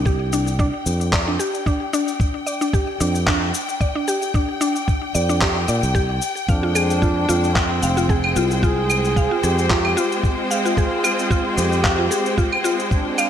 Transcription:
Already playing: C2 G5
0.05 G4, kick, shaker
0.33 D4, shaker
0.47 shaker
0.59 D4, kick, shaker
0.86 F2, shaker
1.01 shaker
1.13 D5, kick, clap, shaker
1.28 D4
1.39 G4, shaker
1.55 shaker
1.66 D4, kick, shaker
1.93 D4, shaker
2.08 shaker
2.20 kick, shaker
2.47 D5, shaker
2.61 D4, shaker
2.73 G4, kick, shaker
3.00 F2 D4, shaker
3.15 shaker
3.27 D4, kick, clap, shaker
3.54 shaker
3.69 shaker
3.81 D5, kick, shaker
3.95 D4
4.08 G4, shaker
4.22 shaker
4.34 D4, kick, shaker
4.61 D4, shaker
4.76 shaker
4.88 kick, shaker
5.15 F2 D5, shaker
5.29 D4, shaker
5.41 G4, kick, clap, shaker
5.68 A#2 D5, shaker
5.83 C2, shaker
5.95 G4, kick, shaker
6.22 shaker
6.37 shaker
6.48 F2 D4 F5, kick, shaker
6.56 G#3
6.63 F4
6.75 G#4 C5, claves, shaker
6.90 C4, shaker
7.02 F4, kick, shaker
7.29 F2 F4, shaker
7.44 shaker
7.55 C4, kick, clap, shaker
7.82 F1 F5, shaker
7.97 F4, shaker
8.09 G#4, kick, shaker
8.24 claves
8.36 C2 F4, shaker
8.51 shaker
8.63 F4 G#4, kick, shaker
8.90 claves, shaker
9.05 shaker
9.16 F5, kick, shaker
9.31 F4
9.43 F2 G4 G#4, shaker
9.58 shaker
9.70 F4, kick, clap, shaker
9.85 claves
9.97 F4, shaker
10.12 shaker
10.24 kick, shaker
10.51 F5, shaker
10.65 F4, shaker
10.77 F4 G#4, kick, shaker
11.04 F4, claves, shaker
11.19 shaker
11.31 F4, kick, shaker
11.57 F2 G4, shaker
11.72 shaker
11.84 F5, kick, clap, shaker
11.99 F4
12.11 G#4, shaker
12.26 shaker
12.38 F4, kick, shaker
12.52 claves
12.64 F4, shaker
12.80 shaker
12.91 D4, kick, shaker
13.18 F5, claves, shaker

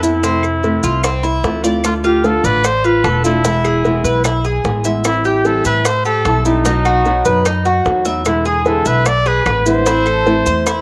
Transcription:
Already playing: F2 A4
0.03 B3 C4 E4, high bongo, maracas
0.23 C3 A3 C4, high bongo, maracas
0.43 high bongo, claves, maracas
0.63 C3 A3 C4, high bongo, maracas
0.83 C2 F4, high bongo, maracas
1.03 C4, muted nylon-string guitar stroke, high bongo, claves, maracas
1.23 E4, high bongo, maracas
1.44 D2 E3 A3 C4 F4, high bongo, low bongo, maracas
1.64 E3 A3 C4 F4 D5, maracas
1.84 D3 A3 D4 F4, high bongo, claves, maracas
2.04 F4 G4, high bongo, maracas
2.24 D3 A3 D4 F4 A4, high bongo, maracas
2.44 A1 B4 D5, maracas
2.64 C5, muted nylon-string guitar stroke, high bongo, claves, maracas
2.84 F4 B4, high bongo, maracas
3.04 E1 D3 A3 D4 F4 A4, high bongo, low bongo, claves, maracas
3.24 A3 D4 E4 F4, high bongo, maracas
3.44 B2 E3 G#3 B3 E4, high bongo, maracas
3.64 G#4, high bongo, claves, maracas
3.84 B2 E3 G#3 B3 E4, high bongo, maracas
4.04 B1 B4, high bongo, maracas
4.24 E4, muted nylon-string guitar stroke, high bongo, claves, maracas
4.45 G#4, high bongo, maracas
4.64 A1 E3 G#3 B3 E4, high bongo, low bongo, maracas
4.84 E3 G#3 B3 E4 E5, maracas
5.04 E3 G3 C4 E4, high bongo, claves, maracas
5.25 G4, high bongo, maracas
5.44 E3 G3 C4 E4 A4, high bongo, maracas
5.65 A2 B4 E5, maracas
5.85 C5, muted nylon-string guitar stroke, high bongo, claves, maracas
6.05 G4 A4, high bongo, maracas
6.25 B1 E3 G3 C4 E4 A4, high bongo, low bongo, claves, maracas
6.45 G3 C4 D#4 E4, high bongo, maracas
6.65 B2 F#3 B3 D#4 F#4, high bongo, maracas
6.85 F#4, high bongo, claves, maracas
7.05 B2 F#3 B3 D#4 F#4, high bongo, maracas
7.25 F#2 B4, high bongo, maracas
7.45 D#4, muted nylon-string guitar stroke, high bongo, claves, maracas
7.65 F#4, high bongo, maracas
7.85 E2 F#3 B3 D#4 F#4, high bongo, low bongo, maracas
8.05 F#3 B3 D#4 F#4 E5, maracas
8.25 B2 D3 G#3 B3 E4, high bongo, claves, maracas
8.45 G#4, high bongo, maracas
8.65 B2 D3 G#3 B3 E4 A4, high bongo, maracas
8.85 B1 B4 E5, maracas
9.05 D5, muted nylon-string guitar stroke, high bongo, claves, maracas
9.26 G#4 B4, high bongo, maracas
9.46 A1 D3 G#3 B3 E4 B4, high bongo, low bongo, claves, maracas
9.66 D3 G#3 B3 E4 C5, high bongo, maracas
9.86 E3 A3 C4 E4, high bongo, maracas
10.06 A4, high bongo, claves, maracas
10.26 E3 A3 C4 E4, high bongo, maracas
10.46 E2 C5, high bongo, maracas
10.66 E4, muted nylon-string guitar stroke, high bongo, claves, maracas

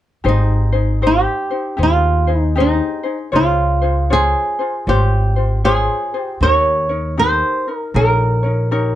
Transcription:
0.24 G#1 D#4 G4 G#4 C5
0.29 D#4
0.72 D#4 G#4 C5
1.02 D#4 G4 C5
1.07 G4
1.51 D#4 C5
1.77 D#2 D#4 G4 G#4 C5
1.83 F4
2.27 D#4 G#4 C5
2.40 D#4
2.56 D#4 G4 G#4 C5
2.60 D#4
3.03 D#4 G#4 C5
3.32 C#2 F4 G#4 C5 C#5
3.82 F4 G#4 C5
4.10 F4 G#4 C5 C#5
4.59 F4 G#4 C5
4.87 G#1 F4 G4 C5 C#5
5.36 F4 C5
5.64 F4 G#4 C5 C#5
6.14 F4 G#4 C5
6.19 G4
6.41 D#2 D#4 G4 A#4 C#5
6.89 D#4 A#4 C#5
7.17 D#4 G4 A#4 C5
7.68 D#4 A#4
7.77 A#4
7.94 A#1 D#4 G4 A#4 C#5
8.43 D#4 A#4 C#5
8.71 D#4 G4 A#4 C#5

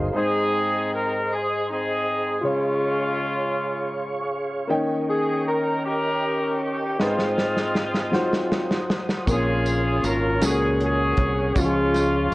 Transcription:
Already playing: D#4 F#4 G#4 A#4 C5 D#5 F5 C6
0.12 G#2 C4 D#4 G#4 C5 D#5 C6
0.16 G#4
0.93 A#4
1.33 G#4
1.68 C4 D#4 G#4
2.41 C#3 G#3 C#4 F4 G#4 C#5 F5 C#6
2.45 F4
4.67 D#3 A#3 C#4 D#4 A#4 D#5 G5 C#6
4.72 C#5
5.09 G#4
5.48 A#4
5.84 C#4 G4 A#4
6.62 G4
6.99 G#2 G#3 C4 D#4 F4 G#4 B4 C5 D#5 G#5 D#6, snare
7.07 C5
7.19 snare
7.38 snare
7.57 snare
7.75 snare
7.94 snare
8.12 F#3 D#4 F4 C5 F#5, snare
8.16 C5
8.33 snare
8.52 snare
8.71 snare
8.90 snare
9.09 snare
9.26 A#1 A#2 C4 C#4 F4 G#4 A#4 C#5 C#6, kick, closed hi-hat, tambourine
9.32 C#4
9.66 closed hi-hat, tambourine
10.04 G#1 A#4, closed hi-hat, tambourine
10.41 C#2 A#2 C#4 F#4 G#4 A4 C#5 F#5 C#6, snare, closed hi-hat, tambourine
10.50 A#4
10.80 C#4 G#4, closed hi-hat
11.17 C2, kick, closed hi-hat
11.55 C#2 F3 G#3 C#4 F4 F#4 F5, kick, closed hi-hat, tambourine
11.59 C#4 G#4
11.65 G#4
11.94 snare, closed hi-hat, tambourine

